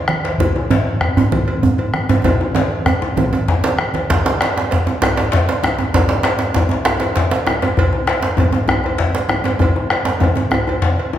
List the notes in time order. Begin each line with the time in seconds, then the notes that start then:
0.08 bombo rim, high conga
0.25 cowbell, djembe slap, high conga
0.38 bombo low, cowbell, low conga, djembe bass
0.56 djembe tone
0.70 cowbell, djembe slap, high conga, djembe bass
1.01 bombo rim, bombo low, cowbell
1.17 djembe slap, high conga, djembe tone, djembe bass
1.32 cowbell, high conga, low conga, djembe bass
1.48 cowbell, djembe slap
1.62 bombo low, djembe bass
1.78 cowbell, djembe tone
1.94 bombo rim, high conga
2.09 cowbell, djembe slap, high conga, djembe bass
2.24 bombo rim, bombo low, cowbell, djembe tone, low conga, djembe bass
2.40 high conga, djembe tone
2.55 cowbell, djembe slap, djembe tone, high conga
2.71 bombo rim, djembe slap, high conga
2.86 bombo rim, bombo low, cowbell, djembe tone
3.01 bombo rim, djembe slap, djembe tone
3.17 cowbell, djembe slap, djembe tone, high conga, djembe bass, low conga
3.33 cowbell, djembe tone, high conga
3.48 bombo low, djembe slap
3.64 cowbell, djembe slap, djembe tone, low conga
3.78 bombo rim, high conga
3.94 bombo rim, cowbell, djembe slap, high conga
4.10 bombo low, cowbell, djembe slap, djembe bass
4.26 djembe slap, djembe tone
4.41 bombo rim, cowbell, djembe slap
4.56 bombo rim, djembe slap
4.71 bombo rim, bombo low, cowbell, djembe slap
4.87 djembe slap, djembe tone
5.02 bombo rim, cowbell, djembe slap, djembe bass
5.17 cowbell, djembe slap, djembe tone
5.32 bombo rim, bombo low, djembe slap
5.49 cowbell, djembe slap
5.63 bombo rim, djembe slap, djembe tone
5.78 djembe slap, djembe tone
5.94 bombo low, cowbell, djembe slap, djembe bass
6.09 djembe slap, djembe tone
6.23 bombo rim, cowbell, djembe slap
6.39 bombo rim, djembe slap
6.54 bombo rim, bombo low, cowbell, djembe slap, djembe tone
6.69 djembe slap, djembe tone
6.85 bombo rim, cowbell, djembe slap, djembe bass
7.00 cowbell, djembe slap
7.01 djembe slap, djembe tone
7.16 bombo rim, bombo low, djembe slap
7.31 cowbell, djembe slap
7.47 bombo rim, djembe slap, djembe tone
7.62 cowbell, djembe slap, djembe tone
7.77 bombo low, cowbell, djembe slap, djembe bass
7.92 djembe tone
8.07 bombo rim, cowbell, djembe slap
8.23 bombo rim, djembe slap
8.37 bombo rim, bombo low, cowbell, djembe tone
8.52 djembe slap, djembe tone
8.68 bombo rim, cowbell, djembe tone, djembe bass
8.84 cowbell, djembe tone
8.98 bombo rim, bombo low, djembe slap
9.15 cowbell, djembe slap
9.29 bombo rim, djembe slap, djembe tone
9.44 cowbell, djembe slap, djembe tone
9.59 bombo rim, bombo low, cowbell, djembe tone, djembe bass
9.76 djembe tone
9.90 bombo rim, cowbell, djembe slap
10.05 djembe slap
10.20 bombo low, cowbell, djembe tone
10.36 djembe slap, djembe tone
10.51 bombo rim, cowbell, djembe tone, djembe bass
10.67 cowbell, djembe slap, djembe tone
10.82 bombo low, djembe slap
10.98 cowbell, djembe slap
11.13 djembe slap, djembe tone